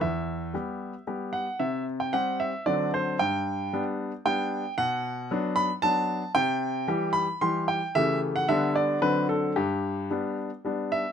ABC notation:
X:1
M:3/4
L:1/16
Q:1/4=114
K:G
V:1 name="Grand piano"
e8 z2 f2 | e3 g f2 e2 d2 c2 | g8 g4 | f6 b2 a4 |
g6 b2 c'2 g2 | e3 f e2 d2 B2 A2 | G8- G2 e2 |]
V:2 name="Grand piano"
E,,4 [G,B,G]4 [G,B,G]4 | C,4 [G,CG]4 [D,F,CD]4 | G,,4 [G,B,D]4 [G,B,D]4 | B,,4 [F,B,D]4 [F,B,D]4 |
C,4 [E,G,G]4 [E,G,G]4 | [^C,E,A,G]4 [D,G,B,D]4 [D,F,=CD]4 | G,,4 [G,B,D]4 [G,B,D]4 |]